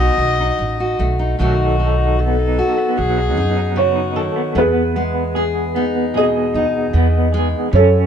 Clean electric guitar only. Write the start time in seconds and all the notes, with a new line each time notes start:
1.39 F#3 A4
1.59 D#4
1.79 A4
1.99 D#4
2.19 B3
2.39 D#4
2.58 A4
2.78 B3
2.98 F#3
3.18 D#4
3.56 D#4
3.77 B3
3.96 D#4
4.16 A4
4.36 B3
4.56 B3
4.96 B3
5.35 G#4
5.75 B3
6.14 G#4
6.53 D#4
6.93 B3
7.32 G#4
7.72 C#4